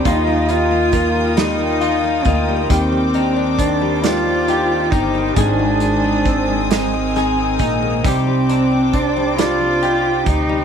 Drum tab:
HH |xxxxxx|xxxxxx|xxxxxx|xxxxxx|
SD |---o--|---o--|---oo-|---o--|
BD |o-o--o|o-o--o|o-o--o|o-o--o|